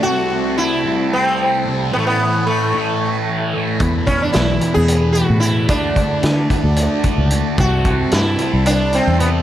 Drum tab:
HH |-------|-------|xxxxxxx|xxxxxxx|
SD |-------|-------|--o----|--o----|
BD |-------|-------|oo-----|oo-o-o-|

HH |xxxxxxx|
SD |--o----|
BD |oo-----|